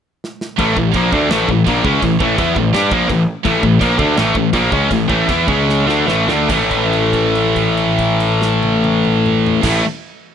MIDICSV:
0, 0, Header, 1, 4, 480
1, 0, Start_track
1, 0, Tempo, 357356
1, 790, Time_signature, 4, 2, 24, 8
1, 5110, Tempo, 371517
1, 7030, Tempo, 403226
1, 8470, Tempo, 422238
1, 12845, End_track
2, 0, Start_track
2, 0, Title_t, "Distorted electric guitar"
2, 0, Program_c, 0, 30
2, 784, Note_on_c, 0, 45, 92
2, 798, Note_on_c, 0, 52, 100
2, 800, Note_on_c, 0, 57, 98
2, 1013, Note_off_c, 0, 45, 0
2, 1013, Note_off_c, 0, 52, 0
2, 1027, Note_off_c, 0, 57, 0
2, 1029, Note_on_c, 0, 45, 60
2, 1029, Note_on_c, 0, 52, 71
2, 1221, Note_off_c, 0, 45, 0
2, 1221, Note_off_c, 0, 52, 0
2, 1282, Note_on_c, 0, 46, 93
2, 1288, Note_on_c, 0, 53, 94
2, 1295, Note_on_c, 0, 58, 97
2, 1508, Note_off_c, 0, 46, 0
2, 1511, Note_off_c, 0, 53, 0
2, 1514, Note_off_c, 0, 58, 0
2, 1521, Note_on_c, 0, 50, 92
2, 1526, Note_on_c, 0, 62, 97
2, 1533, Note_on_c, 0, 57, 103
2, 1747, Note_off_c, 0, 50, 0
2, 1750, Note_off_c, 0, 62, 0
2, 1753, Note_off_c, 0, 57, 0
2, 1765, Note_on_c, 0, 45, 98
2, 1769, Note_on_c, 0, 52, 104
2, 1780, Note_on_c, 0, 57, 112
2, 1989, Note_off_c, 0, 45, 0
2, 1991, Note_off_c, 0, 52, 0
2, 1997, Note_off_c, 0, 57, 0
2, 2011, Note_on_c, 0, 45, 70
2, 2017, Note_on_c, 0, 52, 79
2, 2191, Note_off_c, 0, 45, 0
2, 2194, Note_off_c, 0, 52, 0
2, 2252, Note_on_c, 0, 46, 99
2, 2258, Note_on_c, 0, 53, 103
2, 2260, Note_on_c, 0, 58, 104
2, 2472, Note_off_c, 0, 46, 0
2, 2475, Note_off_c, 0, 53, 0
2, 2476, Note_off_c, 0, 58, 0
2, 2487, Note_on_c, 0, 56, 90
2, 2489, Note_on_c, 0, 49, 94
2, 2494, Note_on_c, 0, 61, 102
2, 2710, Note_off_c, 0, 56, 0
2, 2711, Note_off_c, 0, 49, 0
2, 2714, Note_off_c, 0, 61, 0
2, 2728, Note_on_c, 0, 45, 68
2, 2728, Note_on_c, 0, 52, 71
2, 2910, Note_off_c, 0, 45, 0
2, 2910, Note_off_c, 0, 52, 0
2, 2962, Note_on_c, 0, 45, 99
2, 2965, Note_on_c, 0, 52, 103
2, 2985, Note_on_c, 0, 57, 112
2, 3183, Note_off_c, 0, 52, 0
2, 3187, Note_off_c, 0, 45, 0
2, 3199, Note_off_c, 0, 57, 0
2, 3199, Note_on_c, 0, 52, 89
2, 3214, Note_on_c, 0, 64, 103
2, 3215, Note_on_c, 0, 59, 104
2, 3426, Note_off_c, 0, 52, 0
2, 3433, Note_off_c, 0, 64, 0
2, 3434, Note_off_c, 0, 59, 0
2, 3443, Note_on_c, 0, 45, 64
2, 3452, Note_on_c, 0, 52, 71
2, 3628, Note_off_c, 0, 45, 0
2, 3632, Note_off_c, 0, 52, 0
2, 3678, Note_on_c, 0, 55, 100
2, 3684, Note_on_c, 0, 62, 104
2, 3696, Note_on_c, 0, 67, 107
2, 3906, Note_off_c, 0, 55, 0
2, 3909, Note_off_c, 0, 62, 0
2, 3915, Note_off_c, 0, 67, 0
2, 3927, Note_on_c, 0, 46, 89
2, 3928, Note_on_c, 0, 53, 104
2, 3937, Note_on_c, 0, 58, 104
2, 4150, Note_off_c, 0, 46, 0
2, 4151, Note_off_c, 0, 53, 0
2, 4156, Note_off_c, 0, 58, 0
2, 4162, Note_on_c, 0, 45, 65
2, 4166, Note_on_c, 0, 52, 82
2, 4348, Note_off_c, 0, 45, 0
2, 4349, Note_off_c, 0, 52, 0
2, 4631, Note_on_c, 0, 45, 99
2, 4643, Note_on_c, 0, 52, 105
2, 4649, Note_on_c, 0, 57, 114
2, 4864, Note_off_c, 0, 45, 0
2, 4870, Note_off_c, 0, 52, 0
2, 4873, Note_off_c, 0, 57, 0
2, 4884, Note_on_c, 0, 45, 63
2, 4895, Note_on_c, 0, 52, 77
2, 5070, Note_off_c, 0, 45, 0
2, 5075, Note_off_c, 0, 52, 0
2, 5105, Note_on_c, 0, 46, 93
2, 5118, Note_on_c, 0, 53, 92
2, 5128, Note_on_c, 0, 58, 111
2, 5332, Note_off_c, 0, 46, 0
2, 5337, Note_on_c, 0, 50, 98
2, 5341, Note_off_c, 0, 53, 0
2, 5346, Note_off_c, 0, 58, 0
2, 5349, Note_on_c, 0, 57, 99
2, 5352, Note_on_c, 0, 62, 111
2, 5569, Note_off_c, 0, 50, 0
2, 5574, Note_off_c, 0, 57, 0
2, 5576, Note_off_c, 0, 62, 0
2, 5588, Note_on_c, 0, 45, 96
2, 5596, Note_on_c, 0, 52, 109
2, 5607, Note_on_c, 0, 57, 117
2, 5813, Note_off_c, 0, 45, 0
2, 5817, Note_off_c, 0, 52, 0
2, 5822, Note_off_c, 0, 57, 0
2, 5836, Note_on_c, 0, 45, 67
2, 5836, Note_on_c, 0, 52, 81
2, 6016, Note_off_c, 0, 45, 0
2, 6016, Note_off_c, 0, 52, 0
2, 6050, Note_on_c, 0, 46, 101
2, 6058, Note_on_c, 0, 53, 93
2, 6062, Note_on_c, 0, 58, 104
2, 6284, Note_off_c, 0, 46, 0
2, 6288, Note_off_c, 0, 53, 0
2, 6289, Note_on_c, 0, 49, 93
2, 6291, Note_off_c, 0, 58, 0
2, 6293, Note_on_c, 0, 56, 96
2, 6299, Note_on_c, 0, 61, 103
2, 6527, Note_off_c, 0, 49, 0
2, 6529, Note_off_c, 0, 56, 0
2, 6532, Note_off_c, 0, 61, 0
2, 6534, Note_on_c, 0, 45, 71
2, 6541, Note_on_c, 0, 52, 75
2, 6732, Note_off_c, 0, 45, 0
2, 6735, Note_off_c, 0, 52, 0
2, 6761, Note_on_c, 0, 45, 91
2, 6769, Note_on_c, 0, 52, 97
2, 6771, Note_on_c, 0, 57, 97
2, 7007, Note_off_c, 0, 52, 0
2, 7012, Note_off_c, 0, 45, 0
2, 7018, Note_off_c, 0, 57, 0
2, 7022, Note_on_c, 0, 52, 86
2, 7025, Note_on_c, 0, 59, 97
2, 7037, Note_on_c, 0, 64, 104
2, 7250, Note_off_c, 0, 52, 0
2, 7252, Note_off_c, 0, 59, 0
2, 7255, Note_on_c, 0, 49, 102
2, 7256, Note_off_c, 0, 64, 0
2, 7260, Note_on_c, 0, 56, 97
2, 7261, Note_on_c, 0, 61, 102
2, 7709, Note_off_c, 0, 49, 0
2, 7713, Note_on_c, 0, 50, 92
2, 7722, Note_off_c, 0, 56, 0
2, 7724, Note_off_c, 0, 61, 0
2, 7727, Note_on_c, 0, 57, 86
2, 7729, Note_on_c, 0, 62, 102
2, 7951, Note_off_c, 0, 50, 0
2, 7955, Note_on_c, 0, 45, 96
2, 7956, Note_off_c, 0, 57, 0
2, 7960, Note_on_c, 0, 52, 97
2, 7966, Note_off_c, 0, 62, 0
2, 7971, Note_on_c, 0, 57, 103
2, 8204, Note_off_c, 0, 45, 0
2, 8206, Note_off_c, 0, 52, 0
2, 8206, Note_off_c, 0, 57, 0
2, 8215, Note_on_c, 0, 50, 97
2, 8220, Note_on_c, 0, 57, 91
2, 8224, Note_on_c, 0, 62, 106
2, 8457, Note_off_c, 0, 50, 0
2, 8462, Note_on_c, 0, 45, 98
2, 8463, Note_off_c, 0, 57, 0
2, 8465, Note_off_c, 0, 62, 0
2, 8485, Note_on_c, 0, 52, 103
2, 8511, Note_on_c, 0, 57, 109
2, 12016, Note_off_c, 0, 45, 0
2, 12021, Note_on_c, 0, 45, 97
2, 12049, Note_off_c, 0, 52, 0
2, 12054, Note_on_c, 0, 52, 107
2, 12068, Note_off_c, 0, 57, 0
2, 12073, Note_on_c, 0, 57, 105
2, 12238, Note_off_c, 0, 45, 0
2, 12255, Note_off_c, 0, 52, 0
2, 12264, Note_off_c, 0, 57, 0
2, 12845, End_track
3, 0, Start_track
3, 0, Title_t, "Picked electric bass"
3, 0, Program_c, 1, 34
3, 796, Note_on_c, 1, 33, 91
3, 1016, Note_off_c, 1, 33, 0
3, 1037, Note_on_c, 1, 33, 80
3, 1256, Note_off_c, 1, 33, 0
3, 1271, Note_on_c, 1, 34, 85
3, 1493, Note_off_c, 1, 34, 0
3, 1515, Note_on_c, 1, 38, 87
3, 1729, Note_off_c, 1, 38, 0
3, 1737, Note_on_c, 1, 33, 90
3, 1965, Note_off_c, 1, 33, 0
3, 1993, Note_on_c, 1, 33, 76
3, 2213, Note_off_c, 1, 33, 0
3, 2241, Note_on_c, 1, 34, 97
3, 2458, Note_off_c, 1, 34, 0
3, 2478, Note_on_c, 1, 37, 99
3, 2696, Note_off_c, 1, 37, 0
3, 2715, Note_on_c, 1, 33, 83
3, 2935, Note_off_c, 1, 33, 0
3, 2958, Note_on_c, 1, 33, 99
3, 3176, Note_off_c, 1, 33, 0
3, 3212, Note_on_c, 1, 40, 90
3, 3424, Note_off_c, 1, 40, 0
3, 3441, Note_on_c, 1, 33, 76
3, 3658, Note_off_c, 1, 33, 0
3, 3690, Note_on_c, 1, 43, 99
3, 3903, Note_off_c, 1, 43, 0
3, 3916, Note_on_c, 1, 34, 84
3, 4136, Note_off_c, 1, 34, 0
3, 4160, Note_on_c, 1, 33, 85
3, 4378, Note_off_c, 1, 33, 0
3, 4637, Note_on_c, 1, 33, 90
3, 4857, Note_off_c, 1, 33, 0
3, 4877, Note_on_c, 1, 33, 83
3, 5098, Note_off_c, 1, 33, 0
3, 5116, Note_on_c, 1, 34, 96
3, 5331, Note_off_c, 1, 34, 0
3, 5351, Note_on_c, 1, 38, 95
3, 5566, Note_off_c, 1, 38, 0
3, 5593, Note_on_c, 1, 33, 99
3, 5807, Note_off_c, 1, 33, 0
3, 5813, Note_on_c, 1, 33, 76
3, 6036, Note_off_c, 1, 33, 0
3, 6059, Note_on_c, 1, 34, 98
3, 6280, Note_off_c, 1, 34, 0
3, 6293, Note_on_c, 1, 37, 93
3, 6519, Note_off_c, 1, 37, 0
3, 6535, Note_on_c, 1, 33, 76
3, 6764, Note_off_c, 1, 33, 0
3, 6785, Note_on_c, 1, 33, 97
3, 7014, Note_off_c, 1, 33, 0
3, 7037, Note_on_c, 1, 40, 93
3, 7249, Note_off_c, 1, 40, 0
3, 7254, Note_on_c, 1, 37, 93
3, 7697, Note_off_c, 1, 37, 0
3, 7715, Note_on_c, 1, 38, 83
3, 7944, Note_off_c, 1, 38, 0
3, 7951, Note_on_c, 1, 33, 91
3, 8191, Note_off_c, 1, 33, 0
3, 8209, Note_on_c, 1, 38, 102
3, 8447, Note_off_c, 1, 38, 0
3, 8459, Note_on_c, 1, 33, 93
3, 11916, Note_off_c, 1, 33, 0
3, 12036, Note_on_c, 1, 33, 95
3, 12231, Note_off_c, 1, 33, 0
3, 12845, End_track
4, 0, Start_track
4, 0, Title_t, "Drums"
4, 322, Note_on_c, 9, 38, 74
4, 457, Note_off_c, 9, 38, 0
4, 555, Note_on_c, 9, 38, 89
4, 689, Note_off_c, 9, 38, 0
4, 789, Note_on_c, 9, 36, 111
4, 789, Note_on_c, 9, 52, 64
4, 924, Note_off_c, 9, 36, 0
4, 924, Note_off_c, 9, 52, 0
4, 1029, Note_on_c, 9, 36, 99
4, 1163, Note_off_c, 9, 36, 0
4, 1257, Note_on_c, 9, 52, 69
4, 1269, Note_on_c, 9, 36, 107
4, 1391, Note_off_c, 9, 52, 0
4, 1403, Note_off_c, 9, 36, 0
4, 1511, Note_on_c, 9, 36, 108
4, 1645, Note_off_c, 9, 36, 0
4, 1752, Note_on_c, 9, 52, 62
4, 1758, Note_on_c, 9, 38, 118
4, 1887, Note_off_c, 9, 52, 0
4, 1892, Note_off_c, 9, 38, 0
4, 1996, Note_on_c, 9, 36, 94
4, 2130, Note_off_c, 9, 36, 0
4, 2239, Note_on_c, 9, 36, 103
4, 2248, Note_on_c, 9, 52, 62
4, 2373, Note_off_c, 9, 36, 0
4, 2382, Note_off_c, 9, 52, 0
4, 2479, Note_on_c, 9, 36, 114
4, 2614, Note_off_c, 9, 36, 0
4, 2720, Note_on_c, 9, 36, 98
4, 2721, Note_on_c, 9, 52, 66
4, 2855, Note_off_c, 9, 36, 0
4, 2856, Note_off_c, 9, 52, 0
4, 2961, Note_on_c, 9, 36, 113
4, 3095, Note_off_c, 9, 36, 0
4, 3202, Note_on_c, 9, 36, 114
4, 3206, Note_on_c, 9, 52, 62
4, 3336, Note_off_c, 9, 36, 0
4, 3340, Note_off_c, 9, 52, 0
4, 3441, Note_on_c, 9, 36, 98
4, 3576, Note_off_c, 9, 36, 0
4, 3682, Note_on_c, 9, 52, 60
4, 3687, Note_on_c, 9, 38, 116
4, 3816, Note_off_c, 9, 52, 0
4, 3822, Note_off_c, 9, 38, 0
4, 3916, Note_on_c, 9, 36, 114
4, 4050, Note_off_c, 9, 36, 0
4, 4157, Note_on_c, 9, 36, 94
4, 4164, Note_on_c, 9, 52, 61
4, 4292, Note_off_c, 9, 36, 0
4, 4299, Note_off_c, 9, 52, 0
4, 4636, Note_on_c, 9, 36, 114
4, 4643, Note_on_c, 9, 52, 58
4, 4770, Note_off_c, 9, 36, 0
4, 4778, Note_off_c, 9, 52, 0
4, 4877, Note_on_c, 9, 36, 97
4, 5011, Note_off_c, 9, 36, 0
4, 5119, Note_on_c, 9, 36, 112
4, 5126, Note_on_c, 9, 52, 69
4, 5248, Note_off_c, 9, 36, 0
4, 5255, Note_off_c, 9, 52, 0
4, 5350, Note_on_c, 9, 36, 114
4, 5479, Note_off_c, 9, 36, 0
4, 5584, Note_on_c, 9, 52, 62
4, 5590, Note_on_c, 9, 38, 108
4, 5714, Note_off_c, 9, 52, 0
4, 5719, Note_off_c, 9, 38, 0
4, 5817, Note_on_c, 9, 36, 94
4, 5946, Note_off_c, 9, 36, 0
4, 6052, Note_on_c, 9, 52, 65
4, 6053, Note_on_c, 9, 36, 101
4, 6181, Note_off_c, 9, 52, 0
4, 6182, Note_off_c, 9, 36, 0
4, 6294, Note_on_c, 9, 36, 103
4, 6424, Note_off_c, 9, 36, 0
4, 6536, Note_on_c, 9, 36, 91
4, 6542, Note_on_c, 9, 52, 64
4, 6665, Note_off_c, 9, 36, 0
4, 6671, Note_off_c, 9, 52, 0
4, 6778, Note_on_c, 9, 36, 110
4, 6907, Note_off_c, 9, 36, 0
4, 7028, Note_on_c, 9, 36, 111
4, 7031, Note_on_c, 9, 52, 68
4, 7147, Note_off_c, 9, 36, 0
4, 7150, Note_off_c, 9, 52, 0
4, 7256, Note_on_c, 9, 36, 103
4, 7375, Note_off_c, 9, 36, 0
4, 7506, Note_on_c, 9, 38, 69
4, 7625, Note_off_c, 9, 38, 0
4, 7741, Note_on_c, 9, 38, 68
4, 7860, Note_off_c, 9, 38, 0
4, 7973, Note_on_c, 9, 38, 90
4, 8092, Note_off_c, 9, 38, 0
4, 8212, Note_on_c, 9, 38, 97
4, 8331, Note_off_c, 9, 38, 0
4, 8463, Note_on_c, 9, 36, 108
4, 8464, Note_on_c, 9, 49, 90
4, 8577, Note_off_c, 9, 36, 0
4, 8578, Note_off_c, 9, 49, 0
4, 8707, Note_on_c, 9, 36, 67
4, 8708, Note_on_c, 9, 49, 48
4, 8821, Note_off_c, 9, 36, 0
4, 8821, Note_off_c, 9, 49, 0
4, 8959, Note_on_c, 9, 57, 49
4, 9072, Note_off_c, 9, 57, 0
4, 9189, Note_on_c, 9, 36, 70
4, 9193, Note_on_c, 9, 49, 51
4, 9303, Note_off_c, 9, 36, 0
4, 9307, Note_off_c, 9, 49, 0
4, 9439, Note_on_c, 9, 57, 50
4, 9553, Note_off_c, 9, 57, 0
4, 9675, Note_on_c, 9, 36, 64
4, 9676, Note_on_c, 9, 49, 53
4, 9789, Note_off_c, 9, 36, 0
4, 9790, Note_off_c, 9, 49, 0
4, 9917, Note_on_c, 9, 57, 53
4, 10031, Note_off_c, 9, 57, 0
4, 10159, Note_on_c, 9, 36, 64
4, 10161, Note_on_c, 9, 49, 55
4, 10273, Note_off_c, 9, 36, 0
4, 10275, Note_off_c, 9, 49, 0
4, 10404, Note_on_c, 9, 57, 59
4, 10518, Note_off_c, 9, 57, 0
4, 10648, Note_on_c, 9, 38, 101
4, 10762, Note_off_c, 9, 38, 0
4, 10887, Note_on_c, 9, 48, 99
4, 11000, Note_off_c, 9, 48, 0
4, 11130, Note_on_c, 9, 48, 102
4, 11244, Note_off_c, 9, 48, 0
4, 11368, Note_on_c, 9, 47, 101
4, 11481, Note_off_c, 9, 47, 0
4, 11607, Note_on_c, 9, 45, 99
4, 11721, Note_off_c, 9, 45, 0
4, 11839, Note_on_c, 9, 43, 103
4, 11953, Note_off_c, 9, 43, 0
4, 12029, Note_on_c, 9, 49, 109
4, 12033, Note_on_c, 9, 38, 110
4, 12035, Note_on_c, 9, 36, 114
4, 12142, Note_off_c, 9, 49, 0
4, 12147, Note_off_c, 9, 38, 0
4, 12148, Note_off_c, 9, 36, 0
4, 12845, End_track
0, 0, End_of_file